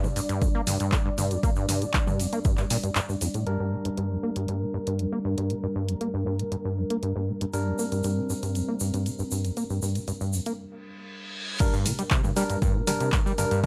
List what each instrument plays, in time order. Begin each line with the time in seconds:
Already playing: analog synth pad G3 D4 D5
0.04 acid bass A#2, mid tom, shaker
0.16 acid bass G2, open hi-hat, shaker
0.29 acid bass G2, closed hi-hat, shaker
0.42 acid bass F2, kick, closed hi-hat, shaker
0.55 acid bass A#3
0.67 acid bass G2, mid tom, open hi-hat, shaker
0.80 acid bass G2, closed hi-hat, shaker
0.92 acid bass A#2, kick, clap, closed hi-hat, shaker
1.06 acid bass G2
1.18 acid bass G2, mid tom, open hi-hat, shaker
1.31 acid bass F2, closed hi-hat, shaker
1.43 acid bass A#3, kick, closed hi-hat, shaker
1.56 acid bass G2, shaker
1.69 acid bass G2, mid tom, open hi-hat, shaker
1.82 acid bass A#2, closed hi-hat, shaker
1.94 acid bass G2, kick, clap, closed hi-hat, shaker
2.07 acid bass G2, mid tom, shaker
2.20 acid bass F2, open hi-hat, shaker
2.33 acid bass A#3, closed hi-hat, shaker
2.44 acid bass G2, kick, closed hi-hat, shaker
2.57 acid bass G2, clap, shaker
2.70 acid bass A#2, open hi-hat, shaker
2.83 acid bass G2, closed hi-hat, shaker
2.95 acid bass G2, clap, closed hi-hat, shaker
3.09 acid bass G2, shaker
3.21 acid bass F2, open hi-hat, shaker
3.34 acid bass A2, closed hi-hat, shaker
3.47 acid bass G2, analog synth pad G3 D4 A#4, tine electric piano G3 D4 A#4, closed hi-hat
3.60 acid bass G2
3.72 acid bass A#2
3.85 acid bass G2, closed hi-hat
3.97 acid bass G2, closed hi-hat
4.11 acid bass F2
4.23 acid bass A#3
4.36 acid bass G2, closed hi-hat
4.48 acid bass G2, closed hi-hat
4.61 acid bass A#2
4.74 acid bass G2
4.87 acid bass G2, closed hi-hat
4.99 acid bass F2, closed hi-hat
5.12 acid bass A#3
5.25 acid bass G2
5.38 acid bass G2, closed hi-hat
5.50 acid bass A#2, closed hi-hat
5.63 acid bass G2
5.75 acid bass G2
5.88 acid bass F2, closed hi-hat
6.01 acid bass A#3, closed hi-hat
6.14 acid bass G2
6.26 acid bass G2
6.39 acid bass A#2, closed hi-hat
6.52 acid bass G2, closed hi-hat
6.65 acid bass G2
6.77 acid bass F2
6.90 acid bass A#3, closed hi-hat
7.03 acid bass G2, closed hi-hat
7.16 acid bass G2
7.28 acid bass A#2
7.41 acid bass G2, closed hi-hat
7.53 acid bass G2, tine electric piano G3 D4 A#4, analog synth pad C4, closed hi-hat, shaker
7.67 acid bass F2
7.79 acid bass A#3, shaker
7.92 acid bass G2, closed hi-hat, shaker
8.03 acid bass G2, closed hi-hat, shaker
8.17 acid bass A#2
8.30 acid bass G2, shaker
8.43 acid bass G2, closed hi-hat, shaker
8.55 acid bass F2, closed hi-hat, shaker
8.68 acid bass A#3
8.80 acid bass G2, shaker
8.94 acid bass G2, closed hi-hat, shaker
9.06 acid bass A#2, closed hi-hat, shaker
9.19 acid bass G2, shaker
9.31 acid bass G2, shaker
9.45 acid bass F2, closed hi-hat, shaker
9.57 acid bass A#3, closed hi-hat, shaker
9.70 acid bass G2, shaker
9.82 acid bass G2, shaker
9.95 acid bass A#2, closed hi-hat, shaker
10.08 acid bass G2, closed hi-hat, shaker
10.21 acid bass G2, shaker
10.33 acid bass F2, shaker
10.46 acid bass A#3, closed hi-hat, shaker
10.59 reverse cymbal
11.60 acid bass G2, tine electric piano G3 D4 A#4, analog synth pad G3 D4 A#4, kick, closed hi-hat, crash, shaker
11.73 acid bass G2, shaker
11.86 acid bass A#2, mid tom, open hi-hat, shaker
11.99 acid bass G3, closed hi-hat, shaker
12.11 acid bass C3, kick, clap, closed hi-hat, shaker
12.24 acid bass G2, mid tom, shaker
12.36 tine electric piano G3 D4 A#4, acid bass G3, open hi-hat, shaker
12.50 acid bass G2, closed hi-hat, shaker
12.62 acid bass G2, kick, closed hi-hat, shaker
12.75 acid bass A#2
12.87 tine electric piano G3 D4 A#4, acid bass G3, mid tom, open hi-hat, shaker
13.00 acid bass C3, closed hi-hat, shaker
13.12 acid bass G2, kick, clap, closed hi-hat, shaker
13.26 acid bass G3, shaker
13.38 acid bass G2, tine electric piano G3 D4 A#4, mid tom, open hi-hat, shaker
13.51 acid bass G2, closed hi-hat, shaker